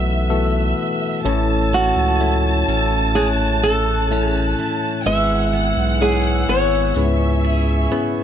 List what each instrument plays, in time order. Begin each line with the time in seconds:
Already playing: sub bass B1, tine electric piano E3 A3 B3 F#4 A4, nylon-string guitar D#4, tonewheel organ B4 F#5 E6, violin section E5
0.30 tine electric piano E3 A3 B3 F#4 A4
1.25 sub bass A1, tine electric piano A2 E3 A3 C#4 E4 A4 C#5, steel-string acoustic guitar A2, tonewheel organ C#5 E5, violin section A5
1.73 steel-string acoustic guitar C#4, nylon-string guitar F#4
1.96 sub bass C#2
2.20 tine electric piano A3 C#4 E4 A4 C#5, steel-string acoustic guitar E4
2.68 sub bass A1, steel-string acoustic guitar C#4
3.15 tine electric piano A3 C#4 E4 C#5, steel-string acoustic guitar E4, nylon-string guitar G#4, tonewheel organ F#6
3.63 nylon-string guitar A4, steel-string acoustic guitar A4
4.10 tine electric piano A3 C#4 E4 A4 E5, steel-string acoustic guitar C#4
4.24 nylon-string guitar G#4
4.59 steel-string acoustic guitar E4
5.06 sub bass G#1, tine electric piano G#2 G#3 B3 E4 G#4 B4, steel-string acoustic guitar G#3, tonewheel organ B4 G#5 E6, nylon-string guitar E5, violin section F#5
5.53 steel-string acoustic guitar B3
5.77 sub bass B1
6.01 tine electric piano G#3 B3 E4 G#4 C#5, steel-string acoustic guitar E4, nylon-string guitar G#4
6.48 sub bass G#1, steel-string acoustic guitar B3, nylon-string guitar C#5
6.96 sub bass C#2, tine electric piano G#2 B3 C#4 E4 G#4 B4, steel-string acoustic guitar C#3, violin section E5, tonewheel organ C#6
7.44 steel-string acoustic guitar G#4
7.91 tine electric piano B3 C#4 E4 G#4 B4, steel-string acoustic guitar B3